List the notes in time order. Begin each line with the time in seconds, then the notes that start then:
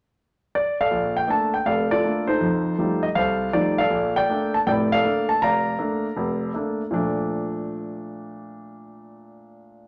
0.55 D5
0.81 A4 D5 F5
0.91 A#1
1.17 G5
1.28 A3 A#3 D4 A5
1.54 G5
1.66 F1 A4 D5 F5
1.91 F4 A4 D5
2.04 A3 A#3 D4
2.27 D#4 A4 C5
2.41 F2
2.78 F3 G3 A3 D#4
3.03 D#5
3.15 C2 A4 C5 F5
3.53 F3 G3 A3 D#4 D5
3.78 A4 D5 F5
3.90 A#1
4.16 D5 G5
4.30 A3 A#3 D4
4.54 A5
4.67 F1 A2 D5 G5
4.92 A4 D5 F5
5.04 A3 A#3 D4
5.29 A5
5.42 F1 D5 F5 A#5
5.79 A3 A#3 D4
6.17 F1
6.54 A3 A#3 D4
6.91 A#2 F3 A3 D4